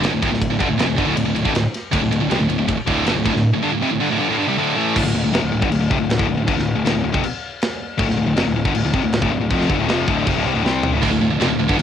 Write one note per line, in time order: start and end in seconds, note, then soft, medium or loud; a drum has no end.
0.03 0.12 G1 medium
0.03 0.12 G2 medium
0.03 0.12 D3 medium
0.03 snare loud
0.03 ride medium
0.12 0.21 D1 medium
0.12 0.20 D2 medium
0.12 0.21 A2 medium
0.21 0.31 D1 loud
0.21 0.30 D2 medium
0.21 0.31 A2 medium
0.21 kick loud
0.21 snare soft
0.21 ride medium
0.31 0.49 D1 medium
0.31 0.47 D2 medium
0.31 0.47 A2 medium
0.31 snare soft
0.42 kick loud
0.42 ride loud
0.50 0.59 D1 medium
0.50 0.60 D2 medium
0.50 0.60 A2 medium
0.60 0.68 G1 medium
0.60 0.69 G2 medium
0.60 0.69 D3 loud
0.60 kick loud
0.60 ride medium
0.69 0.77 D1 medium
0.69 0.79 D2 medium
0.69 0.79 A2 medium
0.78 0.87 F1 medium
0.78 0.88 F2 medium
0.78 0.88 C3 medium
0.78 snare loud
0.78 ride medium
0.88 0.97 D1 medium
0.88 0.97 D2 medium
0.88 0.98 A2 medium
0.98 1.06 G1 loud
0.98 1.06 G2 medium
0.98 1.07 D3 medium
0.98 kick loud
0.98 ride medium
1.06 1.15 D1 medium
1.06 1.15 D2 medium
1.06 1.15 A2 medium
1.16 1.25 D1 medium
1.16 1.24 D2 medium
1.16 1.24 A2 medium
1.16 ride loud
1.25 1.35 D1 medium
1.25 1.33 D2 medium
1.25 1.34 A2 medium
1.35 1.44 D1 medium
1.35 1.44 D2 medium
1.35 1.45 A2 medium
1.35 ride medium
1.44 1.54 G1 medium
1.44 1.53 G2 medium
1.44 1.53 D3 loud
1.44 kick loud
1.53 1.63 D1 medium
1.53 1.63 D2 medium
1.53 1.63 A2 medium
1.53 snare loud
1.53 ride medium
1.74 snare soft
1.74 ride medium
1.91 2.01 D1 medium
1.91 2.00 D2 loud
1.91 2.00 A2 loud
1.91 kick loud
1.91 ride loud
2.01 2.10 D1 medium
2.01 2.10 D2 medium
2.01 2.10 A2 medium
2.11 2.20 D1 medium
2.11 2.19 D2 medium
2.11 2.19 A2 medium
2.11 ride medium
2.20 2.30 D1 medium
2.20 2.29 D2 medium
2.20 2.30 A2 medium
2.29 2.38 C2 medium
2.29 2.39 C3 medium
2.29 2.39 G3 medium
2.29 snare loud
2.29 ride medium
2.39 2.48 D1 medium
2.39 2.47 D2 medium
2.39 2.47 A2 medium
2.48 2.58 D1 medium
2.48 2.57 D2 medium
2.48 2.57 A2 medium
2.48 ride medium
2.58 2.67 D1 medium
2.58 2.67 D2 medium
2.58 2.67 A2 medium
2.68 2.77 D1 medium
2.68 2.76 D2 medium
2.68 2.78 A2 medium
2.68 kick loud
2.68 ride loud
2.77 muted overdriven electric guitar stroke medium
2.77 muted distorted electric guitar stroke medium
2.77 muted picked electric bass stroke soft
2.86 3.05 D1 medium
2.86 3.05 D2 medium
2.86 3.05 A2 medium
2.86 3.05 D3 loud
2.86 kick medium
2.86 ride medium
3.05 3.15 G1 loud
3.05 3.15 G2 medium
3.05 3.15 D3 medium
3.05 snare loud
3.05 ride loud
3.15 3.24 D1 medium
3.15 3.23 D2 medium
3.15 3.24 A2 medium
3.24 3.34 D1 medium
3.24 3.33 D2 medium
3.24 3.33 A2 medium
3.24 kick loud
3.24 snare soft
3.24 ride medium
3.34 3.43 D1 medium
3.34 3.49 D2 medium
3.34 3.50 A2 medium
3.34 snare soft
3.54 3.62 D2 medium
3.54 3.63 A2 medium
3.62 3.71 G2 medium
3.62 3.72 D3 loud
3.72 3.81 D2 medium
3.72 3.81 A2 medium
3.81 3.90 F2 medium
3.81 3.91 C3 loud
3.91 3.99 D2 medium
3.91 4.00 A2 medium
3.99 4.09 G2 medium
3.99 4.10 D3 loud
4.09 4.19 D2 medium
4.09 4.19 A2 loud
4.19 4.28 G2 medium
4.19 4.29 D3 loud
4.29 4.38 D2 medium
4.29 4.38 A2 medium
4.38 4.47 G2 medium
4.38 4.48 D3 medium
4.48 4.57 C3 medium
4.48 4.58 G3 medium
4.57 4.76 D2 medium
4.57 4.75 A2 medium
4.57 4.77 D3 medium
4.77 4.94 A2 medium
4.77 4.95 E3 medium
4.77 4.96 A3 medium
4.95 5.04 D1 loud
4.95 5.03 D2 loud
4.95 5.04 A2 loud
4.95 kick loud
4.95 crash loud
4.95 crash medium
5.04 5.14 D1 medium
5.04 5.13 D2 medium
5.04 5.13 A2 medium
5.04 snare soft
5.14 5.23 D1 medium
5.14 5.22 D2 medium
5.14 5.23 A2 medium
5.23 5.33 D1 medium
5.23 5.32 D2 medium
5.23 5.33 A2 medium
5.33 5.42 F1 loud
5.33 5.42 F2 medium
5.33 5.42 C3 medium
5.33 snare loud
5.33 crash medium
5.42 5.52 D1 medium
5.42 5.50 D2 medium
5.42 5.51 A2 medium
5.51 5.61 D1 medium
5.51 5.61 D2 medium
5.51 5.62 A2 medium
5.61 5.71 G1 loud
5.61 5.70 G2 loud
5.61 5.71 D3 loud
5.61 kick loud
5.71 5.80 D1 medium
5.71 5.79 D2 medium
5.71 5.79 A2 medium
5.71 crash medium
5.80 5.90 D1 medium
5.80 5.89 D2 medium
5.80 5.90 A2 medium
5.89 5.99 F1 medium
5.89 5.98 F2 medium
5.89 5.99 C3 loud
5.89 kick loud
5.99 6.18 D1 medium
5.99 6.14 D2 medium
5.99 6.15 A2 medium
6.10 snare loud
6.10 crash medium
6.18 6.28 D1 loud
6.18 6.27 D2 loud
6.18 6.27 A2 loud
6.18 kick loud
6.28 6.37 D1 medium
6.28 6.36 D2 medium
6.28 6.36 A2 medium
6.37 6.46 D1 medium
6.37 6.46 D2 medium
6.37 6.47 A2 medium
6.46 6.56 G1 loud
6.46 6.56 G2 medium
6.46 6.56 D3 loud
6.46 kick loud
6.46 crash medium
6.57 6.74 D1 medium
6.57 6.72 D2 medium
6.57 6.72 A2 medium
6.57 snare soft
6.75 6.84 D1 medium
6.75 6.83 D2 medium
6.75 6.84 A2 medium
6.84 6.94 D1 medium
6.84 6.94 D2 medium
6.84 6.94 A2 loud
6.84 snare loud
6.84 crash medium
6.94 7.03 D1 medium
6.94 7.03 D2 medium
6.94 7.03 A2 medium
7.03 7.12 D1 medium
7.03 7.13 D2 medium
7.03 7.13 A2 medium
7.13 7.23 F1 medium
7.13 7.22 F2 loud
7.13 7.23 C3 loud
7.13 kick loud
7.24 crash medium
7.62 snare loud
7.62 crash medium
7.98 8.07 D1 loud
7.98 8.07 D2 loud
7.98 8.08 A2 loud
7.98 kick loud
7.98 crash medium
8.08 8.17 D1 medium
8.08 8.17 D2 medium
8.08 8.17 A2 medium
8.08 snare soft
8.18 8.26 D1 medium
8.18 8.26 D2 medium
8.18 8.26 A2 medium
8.26 8.36 D1 medium
8.26 8.36 D2 medium
8.26 8.37 A2 medium
8.36 8.45 F1 medium
8.36 8.45 F2 loud
8.36 8.46 C3 medium
8.36 snare loud
8.36 crash medium
8.46 8.55 D1 medium
8.46 8.55 D2 medium
8.46 8.55 A2 medium
8.56 8.64 D1 medium
8.56 8.65 D2 medium
8.56 8.66 A2 medium
8.65 8.74 G1 loud
8.65 8.74 G2 medium
8.65 8.75 D3 loud
8.65 kick loud
8.74 8.83 D1 medium
8.74 8.83 D2 medium
8.74 8.83 A2 medium
8.74 crash medium
8.84 8.93 D1 medium
8.84 8.93 D2 medium
8.84 8.94 A2 medium
8.93 9.02 F1 medium
8.93 9.03 F2 medium
8.93 9.03 C3 loud
8.93 kick loud
9.03 9.21 D1 medium
9.03 9.18 D2 medium
9.03 9.19 A2 medium
9.13 snare loud
9.13 crash medium
9.22 9.31 D1 medium
9.22 9.31 D2 loud
9.22 9.31 A2 loud
9.22 kick loud
9.31 9.40 D1 medium
9.31 9.40 D2 medium
9.31 9.40 A2 medium
9.41 9.50 D1 medium
9.41 9.50 D2 medium
9.41 9.51 A2 medium
9.50 9.68 F1 loud
9.50 9.69 F2 medium
9.50 9.69 C3 loud
9.50 9.69 F3 loud
9.50 kick loud
9.50 crash medium
9.61 snare soft
9.69 9.78 G1 loud
9.69 9.79 G2 loud
9.69 9.79 D3 loud
9.69 kick loud
9.79 9.88 D1 medium
9.79 9.88 D2 medium
9.79 9.88 A2 loud
9.88 10.06 F1 loud
9.88 10.07 F2 medium
9.88 10.07 C3 loud
9.88 10.07 F3 medium
9.88 snare loud
9.88 crash medium
10.07 10.25 D1 loud
10.07 10.25 D2 loud
10.07 10.26 A2 medium
10.07 10.26 D3 medium
10.07 kick loud
10.26 10.35 F1 medium
10.26 10.35 F2 loud
10.26 10.35 C3 loud
10.26 kick loud
10.26 crash medium
10.35 10.45 D1 medium
10.35 10.44 D2 medium
10.35 10.45 A2 loud
10.45 10.54 C2 medium
10.45 10.54 C3 medium
10.45 10.54 G3 medium
10.54 10.64 D1 medium
10.54 10.63 D2 loud
10.54 10.64 A2 medium
10.64 10.91 C2 medium
10.64 10.92 C3 medium
10.64 10.92 G3 loud
10.64 10.93 C4 medium
10.64 snare medium
10.83 floor tom loud
10.93 11.02 D1 loud
10.93 11.01 D2 medium
10.93 11.02 A2 loud
11.02 11.11 D1 loud
11.02 11.11 D2 loud
11.02 11.11 A2 loud
11.02 kick loud
11.02 splash loud
11.02 crash medium
11.12 11.21 D1 medium
11.12 11.20 D2 medium
11.12 11.20 A2 medium
11.21 11.30 D1 medium
11.21 11.30 D2 medium
11.21 11.30 A2 medium
11.31 11.40 D1 medium
11.31 11.40 D2 medium
11.31 11.41 A2 medium
11.40 11.49 F1 medium
11.40 11.49 F2 medium
11.40 11.50 C3 medium
11.40 snare loud
11.40 crash medium
11.50 11.59 D1 medium
11.50 11.58 D2 medium
11.50 11.59 A2 medium
11.59 11.68 D1 medium
11.59 11.68 D2 medium
11.59 11.69 A2 medium
11.68 11.78 G1 loud
11.68 11.77 G2 loud
11.68 11.78 D3 loud
11.68 kick loud
11.78 11.82 D1 medium
11.78 11.82 D2 medium
11.78 11.82 A2 medium
11.78 crash medium